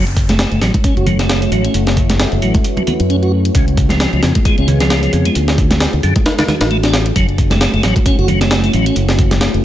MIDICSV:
0, 0, Header, 1, 6, 480
1, 0, Start_track
1, 0, Key_signature, 3, "minor"
1, 0, Tempo, 451128
1, 1858, Time_signature, 4, 2, 24, 8
1, 10264, End_track
2, 0, Start_track
2, 0, Title_t, "Ambient pad"
2, 0, Program_c, 0, 92
2, 0, Note_on_c, 0, 57, 83
2, 0, Note_on_c, 0, 61, 75
2, 0, Note_on_c, 0, 64, 77
2, 0, Note_on_c, 0, 66, 74
2, 0, Note_on_c, 0, 73, 94
2, 1837, Note_off_c, 0, 73, 0
2, 1855, Note_on_c, 0, 71, 95
2, 3737, Note_off_c, 0, 64, 0
2, 3738, Note_off_c, 0, 57, 0
2, 3739, Note_off_c, 0, 66, 0
2, 3757, Note_off_c, 0, 71, 0
2, 3777, Note_on_c, 0, 59, 84
2, 3778, Note_on_c, 0, 73, 91
2, 3779, Note_on_c, 0, 68, 76
2, 3780, Note_on_c, 0, 65, 73
2, 5655, Note_off_c, 0, 61, 0
2, 5678, Note_off_c, 0, 59, 0
2, 5679, Note_off_c, 0, 68, 0
2, 5679, Note_off_c, 0, 73, 0
2, 5680, Note_off_c, 0, 65, 0
2, 5698, Note_on_c, 0, 62, 84
2, 5699, Note_on_c, 0, 66, 77
2, 5700, Note_on_c, 0, 69, 93
2, 7599, Note_off_c, 0, 62, 0
2, 7600, Note_off_c, 0, 69, 0
2, 7617, Note_on_c, 0, 73, 89
2, 7618, Note_on_c, 0, 57, 79
2, 7620, Note_on_c, 0, 61, 80
2, 7620, Note_on_c, 0, 64, 73
2, 9518, Note_off_c, 0, 73, 0
2, 9540, Note_on_c, 0, 71, 92
2, 10264, Note_off_c, 0, 57, 0
2, 10264, Note_off_c, 0, 61, 0
2, 10264, Note_off_c, 0, 64, 0
2, 10264, Note_off_c, 0, 66, 0
2, 10264, Note_off_c, 0, 71, 0
2, 10264, End_track
3, 0, Start_track
3, 0, Title_t, "Tonewheel organ"
3, 0, Program_c, 1, 16
3, 314, Note_on_c, 1, 57, 66
3, 538, Note_off_c, 1, 57, 0
3, 551, Note_on_c, 1, 57, 77
3, 640, Note_off_c, 1, 57, 0
3, 658, Note_on_c, 1, 54, 97
3, 770, Note_off_c, 1, 54, 0
3, 897, Note_on_c, 1, 61, 100
3, 1010, Note_off_c, 1, 61, 0
3, 1032, Note_on_c, 1, 66, 69
3, 1132, Note_off_c, 1, 66, 0
3, 1136, Note_on_c, 1, 54, 98
3, 1250, Note_off_c, 1, 54, 0
3, 1273, Note_on_c, 1, 57, 74
3, 1499, Note_off_c, 1, 57, 0
3, 1513, Note_on_c, 1, 57, 74
3, 1601, Note_off_c, 1, 57, 0
3, 1622, Note_on_c, 1, 54, 74
3, 1740, Note_off_c, 1, 54, 0
3, 1753, Note_on_c, 1, 61, 95
3, 1853, Note_off_c, 1, 61, 0
3, 2579, Note_on_c, 1, 54, 72
3, 2691, Note_off_c, 1, 54, 0
3, 2952, Note_on_c, 1, 54, 96
3, 3006, Note_off_c, 1, 54, 0
3, 3057, Note_on_c, 1, 59, 76
3, 3125, Note_off_c, 1, 59, 0
3, 3296, Note_on_c, 1, 61, 98
3, 3364, Note_off_c, 1, 61, 0
3, 3431, Note_on_c, 1, 66, 99
3, 3532, Note_off_c, 1, 66, 0
3, 3777, Note_on_c, 1, 49, 93
3, 3890, Note_off_c, 1, 49, 0
3, 4152, Note_on_c, 1, 53, 69
3, 4379, Note_off_c, 1, 53, 0
3, 4393, Note_on_c, 1, 53, 74
3, 4481, Note_off_c, 1, 53, 0
3, 4500, Note_on_c, 1, 49, 100
3, 4611, Note_off_c, 1, 49, 0
3, 4741, Note_on_c, 1, 56, 97
3, 4852, Note_off_c, 1, 56, 0
3, 4876, Note_on_c, 1, 61, 77
3, 4974, Note_off_c, 1, 61, 0
3, 4982, Note_on_c, 1, 49, 101
3, 5093, Note_off_c, 1, 49, 0
3, 5116, Note_on_c, 1, 53, 74
3, 5341, Note_off_c, 1, 53, 0
3, 5359, Note_on_c, 1, 53, 74
3, 5444, Note_off_c, 1, 53, 0
3, 5463, Note_on_c, 1, 49, 75
3, 5581, Note_off_c, 1, 49, 0
3, 5595, Note_on_c, 1, 56, 92
3, 5694, Note_off_c, 1, 56, 0
3, 6421, Note_on_c, 1, 50, 69
3, 6532, Note_off_c, 1, 50, 0
3, 6796, Note_on_c, 1, 50, 103
3, 6847, Note_off_c, 1, 50, 0
3, 6902, Note_on_c, 1, 56, 78
3, 6967, Note_off_c, 1, 56, 0
3, 7139, Note_on_c, 1, 57, 101
3, 7206, Note_off_c, 1, 57, 0
3, 7271, Note_on_c, 1, 62, 96
3, 7372, Note_off_c, 1, 62, 0
3, 7619, Note_on_c, 1, 54, 97
3, 7731, Note_off_c, 1, 54, 0
3, 7992, Note_on_c, 1, 57, 73
3, 8217, Note_off_c, 1, 57, 0
3, 8230, Note_on_c, 1, 57, 75
3, 8320, Note_off_c, 1, 57, 0
3, 8338, Note_on_c, 1, 54, 97
3, 8450, Note_off_c, 1, 54, 0
3, 8577, Note_on_c, 1, 61, 95
3, 8690, Note_off_c, 1, 61, 0
3, 8712, Note_on_c, 1, 66, 74
3, 8812, Note_off_c, 1, 66, 0
3, 8818, Note_on_c, 1, 54, 102
3, 8930, Note_off_c, 1, 54, 0
3, 8951, Note_on_c, 1, 57, 73
3, 9176, Note_off_c, 1, 57, 0
3, 9189, Note_on_c, 1, 57, 74
3, 9279, Note_off_c, 1, 57, 0
3, 9296, Note_on_c, 1, 54, 77
3, 9417, Note_off_c, 1, 54, 0
3, 9431, Note_on_c, 1, 61, 95
3, 9532, Note_off_c, 1, 61, 0
3, 10264, End_track
4, 0, Start_track
4, 0, Title_t, "Fingered electric bass"
4, 0, Program_c, 2, 33
4, 0, Note_on_c, 2, 30, 88
4, 468, Note_off_c, 2, 30, 0
4, 549, Note_on_c, 2, 30, 100
4, 615, Note_off_c, 2, 30, 0
4, 655, Note_on_c, 2, 33, 92
4, 738, Note_off_c, 2, 33, 0
4, 1028, Note_on_c, 2, 30, 75
4, 1550, Note_off_c, 2, 30, 0
4, 1613, Note_on_c, 2, 33, 97
4, 1773, Note_off_c, 2, 33, 0
4, 1854, Note_on_c, 2, 30, 91
4, 2387, Note_off_c, 2, 30, 0
4, 2472, Note_on_c, 2, 30, 96
4, 2537, Note_off_c, 2, 30, 0
4, 2576, Note_on_c, 2, 33, 96
4, 2659, Note_off_c, 2, 33, 0
4, 3191, Note_on_c, 2, 42, 82
4, 3712, Note_off_c, 2, 42, 0
4, 3777, Note_on_c, 2, 37, 89
4, 4308, Note_off_c, 2, 37, 0
4, 4393, Note_on_c, 2, 37, 102
4, 4457, Note_off_c, 2, 37, 0
4, 4501, Note_on_c, 2, 41, 101
4, 4581, Note_off_c, 2, 41, 0
4, 4875, Note_on_c, 2, 37, 80
4, 5394, Note_off_c, 2, 37, 0
4, 5458, Note_on_c, 2, 41, 95
4, 5616, Note_off_c, 2, 41, 0
4, 5700, Note_on_c, 2, 38, 89
4, 6230, Note_off_c, 2, 38, 0
4, 6315, Note_on_c, 2, 38, 94
4, 6378, Note_off_c, 2, 38, 0
4, 6422, Note_on_c, 2, 42, 94
4, 6502, Note_off_c, 2, 42, 0
4, 7034, Note_on_c, 2, 33, 95
4, 7553, Note_off_c, 2, 33, 0
4, 7617, Note_on_c, 2, 30, 91
4, 8148, Note_off_c, 2, 30, 0
4, 8229, Note_on_c, 2, 30, 97
4, 8295, Note_off_c, 2, 30, 0
4, 8337, Note_on_c, 2, 33, 96
4, 8419, Note_off_c, 2, 33, 0
4, 8709, Note_on_c, 2, 30, 80
4, 9231, Note_off_c, 2, 30, 0
4, 9299, Note_on_c, 2, 33, 96
4, 9456, Note_off_c, 2, 33, 0
4, 9536, Note_on_c, 2, 30, 93
4, 10068, Note_off_c, 2, 30, 0
4, 10151, Note_on_c, 2, 30, 98
4, 10217, Note_off_c, 2, 30, 0
4, 10264, End_track
5, 0, Start_track
5, 0, Title_t, "Muted fingered electric bass strokes"
5, 894, Note_on_c, 9, 29, 43
5, 1001, Note_off_c, 9, 29, 0
5, 4738, Note_on_c, 9, 29, 42
5, 4845, Note_off_c, 9, 29, 0
5, 8573, Note_on_c, 9, 29, 42
5, 8679, Note_off_c, 9, 29, 0
5, 10264, End_track
6, 0, Start_track
6, 0, Title_t, "Drums"
6, 72, Note_on_c, 9, 42, 32
6, 176, Note_on_c, 9, 36, 90
6, 177, Note_off_c, 9, 42, 0
6, 177, Note_on_c, 9, 42, 66
6, 283, Note_off_c, 9, 36, 0
6, 284, Note_off_c, 9, 42, 0
6, 310, Note_on_c, 9, 42, 65
6, 311, Note_on_c, 9, 38, 35
6, 317, Note_on_c, 9, 63, 90
6, 414, Note_off_c, 9, 38, 0
6, 414, Note_off_c, 9, 42, 0
6, 414, Note_on_c, 9, 38, 110
6, 414, Note_on_c, 9, 42, 80
6, 416, Note_off_c, 9, 42, 0
6, 416, Note_on_c, 9, 42, 52
6, 424, Note_off_c, 9, 63, 0
6, 521, Note_off_c, 9, 38, 0
6, 522, Note_off_c, 9, 42, 0
6, 549, Note_on_c, 9, 42, 31
6, 654, Note_off_c, 9, 42, 0
6, 654, Note_on_c, 9, 38, 55
6, 654, Note_on_c, 9, 42, 65
6, 761, Note_off_c, 9, 38, 0
6, 761, Note_off_c, 9, 42, 0
6, 790, Note_on_c, 9, 36, 92
6, 790, Note_on_c, 9, 63, 90
6, 793, Note_on_c, 9, 42, 69
6, 894, Note_off_c, 9, 42, 0
6, 894, Note_on_c, 9, 42, 89
6, 895, Note_off_c, 9, 36, 0
6, 895, Note_on_c, 9, 36, 108
6, 896, Note_off_c, 9, 63, 0
6, 897, Note_off_c, 9, 42, 0
6, 897, Note_on_c, 9, 42, 55
6, 1001, Note_off_c, 9, 36, 0
6, 1003, Note_off_c, 9, 42, 0
6, 1032, Note_on_c, 9, 42, 33
6, 1132, Note_on_c, 9, 64, 82
6, 1133, Note_off_c, 9, 42, 0
6, 1133, Note_on_c, 9, 42, 65
6, 1238, Note_off_c, 9, 64, 0
6, 1240, Note_off_c, 9, 42, 0
6, 1269, Note_on_c, 9, 42, 64
6, 1270, Note_on_c, 9, 38, 45
6, 1375, Note_off_c, 9, 42, 0
6, 1376, Note_off_c, 9, 38, 0
6, 1378, Note_on_c, 9, 38, 111
6, 1378, Note_on_c, 9, 42, 53
6, 1484, Note_off_c, 9, 38, 0
6, 1485, Note_off_c, 9, 42, 0
6, 1511, Note_on_c, 9, 42, 46
6, 1512, Note_off_c, 9, 42, 0
6, 1512, Note_on_c, 9, 42, 31
6, 1616, Note_off_c, 9, 42, 0
6, 1616, Note_on_c, 9, 42, 70
6, 1723, Note_off_c, 9, 42, 0
6, 1750, Note_on_c, 9, 42, 61
6, 1854, Note_off_c, 9, 42, 0
6, 1854, Note_on_c, 9, 42, 79
6, 1961, Note_off_c, 9, 42, 0
6, 1987, Note_on_c, 9, 42, 34
6, 1991, Note_on_c, 9, 38, 56
6, 2094, Note_off_c, 9, 42, 0
6, 2095, Note_on_c, 9, 42, 66
6, 2096, Note_on_c, 9, 36, 86
6, 2097, Note_off_c, 9, 38, 0
6, 2201, Note_off_c, 9, 42, 0
6, 2202, Note_off_c, 9, 36, 0
6, 2230, Note_on_c, 9, 42, 69
6, 2231, Note_on_c, 9, 38, 41
6, 2232, Note_on_c, 9, 63, 101
6, 2335, Note_off_c, 9, 42, 0
6, 2335, Note_on_c, 9, 42, 50
6, 2336, Note_off_c, 9, 38, 0
6, 2336, Note_off_c, 9, 42, 0
6, 2336, Note_on_c, 9, 38, 112
6, 2336, Note_on_c, 9, 42, 81
6, 2338, Note_off_c, 9, 63, 0
6, 2443, Note_off_c, 9, 38, 0
6, 2443, Note_off_c, 9, 42, 0
6, 2467, Note_on_c, 9, 42, 33
6, 2574, Note_off_c, 9, 42, 0
6, 2576, Note_on_c, 9, 42, 63
6, 2683, Note_off_c, 9, 42, 0
6, 2704, Note_on_c, 9, 63, 99
6, 2709, Note_on_c, 9, 42, 67
6, 2710, Note_on_c, 9, 36, 92
6, 2811, Note_off_c, 9, 63, 0
6, 2814, Note_off_c, 9, 42, 0
6, 2814, Note_on_c, 9, 42, 85
6, 2816, Note_off_c, 9, 36, 0
6, 2921, Note_off_c, 9, 42, 0
6, 2945, Note_on_c, 9, 63, 95
6, 2950, Note_on_c, 9, 42, 31
6, 3052, Note_off_c, 9, 63, 0
6, 3054, Note_off_c, 9, 42, 0
6, 3054, Note_on_c, 9, 42, 67
6, 3057, Note_on_c, 9, 64, 81
6, 3161, Note_off_c, 9, 42, 0
6, 3163, Note_off_c, 9, 64, 0
6, 3190, Note_on_c, 9, 42, 67
6, 3296, Note_off_c, 9, 42, 0
6, 3298, Note_on_c, 9, 42, 51
6, 3405, Note_off_c, 9, 42, 0
6, 3434, Note_on_c, 9, 42, 31
6, 3541, Note_off_c, 9, 42, 0
6, 3673, Note_on_c, 9, 42, 66
6, 3774, Note_off_c, 9, 42, 0
6, 3774, Note_on_c, 9, 42, 82
6, 3776, Note_on_c, 9, 36, 104
6, 3781, Note_off_c, 9, 42, 0
6, 3781, Note_on_c, 9, 42, 54
6, 3883, Note_off_c, 9, 36, 0
6, 3887, Note_off_c, 9, 42, 0
6, 3914, Note_on_c, 9, 42, 31
6, 4015, Note_off_c, 9, 42, 0
6, 4015, Note_on_c, 9, 42, 63
6, 4017, Note_on_c, 9, 36, 96
6, 4122, Note_off_c, 9, 42, 0
6, 4124, Note_off_c, 9, 36, 0
6, 4140, Note_on_c, 9, 63, 93
6, 4149, Note_on_c, 9, 38, 37
6, 4154, Note_on_c, 9, 42, 68
6, 4247, Note_off_c, 9, 63, 0
6, 4256, Note_off_c, 9, 38, 0
6, 4257, Note_off_c, 9, 42, 0
6, 4257, Note_on_c, 9, 38, 112
6, 4257, Note_on_c, 9, 42, 84
6, 4261, Note_off_c, 9, 42, 0
6, 4261, Note_on_c, 9, 42, 51
6, 4363, Note_off_c, 9, 38, 0
6, 4367, Note_off_c, 9, 42, 0
6, 4394, Note_on_c, 9, 42, 32
6, 4497, Note_off_c, 9, 42, 0
6, 4497, Note_on_c, 9, 38, 56
6, 4497, Note_on_c, 9, 42, 62
6, 4603, Note_off_c, 9, 38, 0
6, 4603, Note_off_c, 9, 42, 0
6, 4631, Note_on_c, 9, 42, 67
6, 4633, Note_on_c, 9, 36, 96
6, 4635, Note_on_c, 9, 63, 89
6, 4737, Note_off_c, 9, 42, 0
6, 4737, Note_on_c, 9, 42, 88
6, 4738, Note_off_c, 9, 42, 0
6, 4738, Note_on_c, 9, 42, 54
6, 4739, Note_off_c, 9, 36, 0
6, 4739, Note_on_c, 9, 36, 112
6, 4741, Note_off_c, 9, 63, 0
6, 4844, Note_off_c, 9, 42, 0
6, 4845, Note_off_c, 9, 36, 0
6, 4871, Note_on_c, 9, 42, 30
6, 4977, Note_off_c, 9, 42, 0
6, 4978, Note_on_c, 9, 42, 66
6, 4979, Note_on_c, 9, 64, 79
6, 5084, Note_off_c, 9, 42, 0
6, 5085, Note_off_c, 9, 64, 0
6, 5112, Note_on_c, 9, 38, 47
6, 5113, Note_on_c, 9, 42, 64
6, 5217, Note_off_c, 9, 42, 0
6, 5217, Note_on_c, 9, 42, 52
6, 5218, Note_off_c, 9, 38, 0
6, 5218, Note_off_c, 9, 42, 0
6, 5218, Note_on_c, 9, 38, 106
6, 5218, Note_on_c, 9, 42, 87
6, 5324, Note_off_c, 9, 38, 0
6, 5324, Note_off_c, 9, 42, 0
6, 5350, Note_on_c, 9, 42, 46
6, 5456, Note_off_c, 9, 42, 0
6, 5456, Note_on_c, 9, 42, 70
6, 5563, Note_off_c, 9, 42, 0
6, 5591, Note_on_c, 9, 42, 65
6, 5696, Note_off_c, 9, 42, 0
6, 5696, Note_on_c, 9, 42, 80
6, 5699, Note_off_c, 9, 42, 0
6, 5699, Note_on_c, 9, 42, 52
6, 5805, Note_off_c, 9, 42, 0
6, 5831, Note_on_c, 9, 38, 59
6, 5832, Note_on_c, 9, 42, 31
6, 5937, Note_off_c, 9, 38, 0
6, 5938, Note_off_c, 9, 42, 0
6, 5938, Note_on_c, 9, 36, 97
6, 5938, Note_on_c, 9, 42, 64
6, 6045, Note_off_c, 9, 36, 0
6, 6045, Note_off_c, 9, 42, 0
6, 6071, Note_on_c, 9, 38, 42
6, 6071, Note_on_c, 9, 63, 87
6, 6073, Note_on_c, 9, 42, 63
6, 6176, Note_off_c, 9, 38, 0
6, 6176, Note_off_c, 9, 42, 0
6, 6176, Note_on_c, 9, 38, 116
6, 6176, Note_on_c, 9, 42, 84
6, 6178, Note_off_c, 9, 63, 0
6, 6179, Note_off_c, 9, 42, 0
6, 6179, Note_on_c, 9, 42, 47
6, 6283, Note_off_c, 9, 38, 0
6, 6285, Note_off_c, 9, 42, 0
6, 6312, Note_on_c, 9, 42, 31
6, 6418, Note_off_c, 9, 42, 0
6, 6418, Note_on_c, 9, 42, 65
6, 6525, Note_off_c, 9, 42, 0
6, 6551, Note_on_c, 9, 42, 63
6, 6553, Note_on_c, 9, 36, 95
6, 6555, Note_on_c, 9, 63, 89
6, 6657, Note_off_c, 9, 42, 0
6, 6658, Note_on_c, 9, 42, 51
6, 6660, Note_off_c, 9, 36, 0
6, 6660, Note_off_c, 9, 42, 0
6, 6660, Note_on_c, 9, 38, 111
6, 6660, Note_on_c, 9, 42, 82
6, 6661, Note_off_c, 9, 63, 0
6, 6767, Note_off_c, 9, 38, 0
6, 6767, Note_off_c, 9, 42, 0
6, 6791, Note_on_c, 9, 42, 30
6, 6794, Note_on_c, 9, 63, 81
6, 6795, Note_off_c, 9, 42, 0
6, 6795, Note_on_c, 9, 38, 99
6, 6795, Note_on_c, 9, 42, 75
6, 6894, Note_on_c, 9, 64, 73
6, 6900, Note_off_c, 9, 38, 0
6, 6900, Note_off_c, 9, 42, 0
6, 6900, Note_off_c, 9, 63, 0
6, 6900, Note_on_c, 9, 38, 51
6, 6900, Note_on_c, 9, 42, 61
6, 7000, Note_off_c, 9, 64, 0
6, 7006, Note_off_c, 9, 38, 0
6, 7006, Note_off_c, 9, 42, 0
6, 7030, Note_on_c, 9, 42, 60
6, 7034, Note_off_c, 9, 42, 0
6, 7034, Note_on_c, 9, 38, 102
6, 7034, Note_on_c, 9, 42, 78
6, 7136, Note_off_c, 9, 42, 0
6, 7136, Note_on_c, 9, 42, 51
6, 7140, Note_off_c, 9, 38, 0
6, 7243, Note_off_c, 9, 42, 0
6, 7271, Note_on_c, 9, 42, 29
6, 7273, Note_off_c, 9, 42, 0
6, 7273, Note_on_c, 9, 38, 51
6, 7273, Note_on_c, 9, 42, 59
6, 7378, Note_off_c, 9, 38, 0
6, 7378, Note_off_c, 9, 42, 0
6, 7378, Note_on_c, 9, 38, 103
6, 7378, Note_on_c, 9, 42, 81
6, 7485, Note_off_c, 9, 38, 0
6, 7485, Note_off_c, 9, 42, 0
6, 7510, Note_on_c, 9, 42, 62
6, 7616, Note_off_c, 9, 42, 0
6, 7616, Note_on_c, 9, 36, 106
6, 7617, Note_on_c, 9, 42, 50
6, 7723, Note_off_c, 9, 36, 0
6, 7724, Note_off_c, 9, 42, 0
6, 7752, Note_on_c, 9, 42, 31
6, 7855, Note_off_c, 9, 42, 0
6, 7855, Note_on_c, 9, 42, 69
6, 7856, Note_on_c, 9, 36, 93
6, 7962, Note_off_c, 9, 42, 0
6, 7963, Note_off_c, 9, 36, 0
6, 7984, Note_on_c, 9, 63, 91
6, 7990, Note_on_c, 9, 38, 36
6, 7990, Note_on_c, 9, 42, 62
6, 8090, Note_off_c, 9, 63, 0
6, 8096, Note_off_c, 9, 38, 0
6, 8096, Note_off_c, 9, 42, 0
6, 8096, Note_on_c, 9, 38, 113
6, 8096, Note_on_c, 9, 42, 82
6, 8098, Note_off_c, 9, 42, 0
6, 8098, Note_on_c, 9, 42, 49
6, 8202, Note_off_c, 9, 38, 0
6, 8205, Note_off_c, 9, 42, 0
6, 8232, Note_on_c, 9, 42, 30
6, 8335, Note_off_c, 9, 42, 0
6, 8335, Note_on_c, 9, 38, 55
6, 8335, Note_on_c, 9, 42, 65
6, 8441, Note_off_c, 9, 38, 0
6, 8441, Note_off_c, 9, 42, 0
6, 8469, Note_on_c, 9, 36, 95
6, 8471, Note_on_c, 9, 63, 79
6, 8473, Note_on_c, 9, 42, 61
6, 8573, Note_off_c, 9, 42, 0
6, 8573, Note_on_c, 9, 42, 86
6, 8574, Note_off_c, 9, 36, 0
6, 8574, Note_on_c, 9, 36, 115
6, 8577, Note_off_c, 9, 63, 0
6, 8578, Note_off_c, 9, 42, 0
6, 8578, Note_on_c, 9, 42, 48
6, 8681, Note_off_c, 9, 36, 0
6, 8685, Note_off_c, 9, 42, 0
6, 8712, Note_on_c, 9, 42, 29
6, 8809, Note_on_c, 9, 64, 77
6, 8813, Note_off_c, 9, 42, 0
6, 8813, Note_on_c, 9, 42, 68
6, 8915, Note_off_c, 9, 64, 0
6, 8919, Note_off_c, 9, 42, 0
6, 8949, Note_on_c, 9, 38, 48
6, 8953, Note_on_c, 9, 42, 60
6, 9053, Note_off_c, 9, 38, 0
6, 9053, Note_off_c, 9, 42, 0
6, 9053, Note_on_c, 9, 38, 113
6, 9053, Note_on_c, 9, 42, 82
6, 9057, Note_off_c, 9, 42, 0
6, 9057, Note_on_c, 9, 42, 50
6, 9160, Note_off_c, 9, 38, 0
6, 9164, Note_off_c, 9, 42, 0
6, 9189, Note_on_c, 9, 42, 43
6, 9190, Note_off_c, 9, 42, 0
6, 9190, Note_on_c, 9, 42, 29
6, 9293, Note_off_c, 9, 42, 0
6, 9293, Note_on_c, 9, 42, 70
6, 9400, Note_off_c, 9, 42, 0
6, 9429, Note_on_c, 9, 42, 59
6, 9533, Note_off_c, 9, 42, 0
6, 9533, Note_on_c, 9, 42, 85
6, 9536, Note_off_c, 9, 42, 0
6, 9536, Note_on_c, 9, 42, 50
6, 9642, Note_off_c, 9, 42, 0
6, 9668, Note_on_c, 9, 38, 60
6, 9671, Note_on_c, 9, 42, 29
6, 9773, Note_off_c, 9, 42, 0
6, 9773, Note_on_c, 9, 42, 65
6, 9774, Note_off_c, 9, 38, 0
6, 9775, Note_on_c, 9, 36, 95
6, 9880, Note_off_c, 9, 42, 0
6, 9882, Note_off_c, 9, 36, 0
6, 9908, Note_on_c, 9, 38, 40
6, 9909, Note_on_c, 9, 42, 60
6, 9909, Note_on_c, 9, 63, 88
6, 10012, Note_off_c, 9, 38, 0
6, 10012, Note_off_c, 9, 42, 0
6, 10012, Note_on_c, 9, 38, 113
6, 10012, Note_on_c, 9, 42, 82
6, 10015, Note_off_c, 9, 63, 0
6, 10016, Note_off_c, 9, 42, 0
6, 10016, Note_on_c, 9, 42, 47
6, 10118, Note_off_c, 9, 38, 0
6, 10122, Note_off_c, 9, 42, 0
6, 10154, Note_on_c, 9, 42, 30
6, 10261, Note_off_c, 9, 42, 0
6, 10264, End_track
0, 0, End_of_file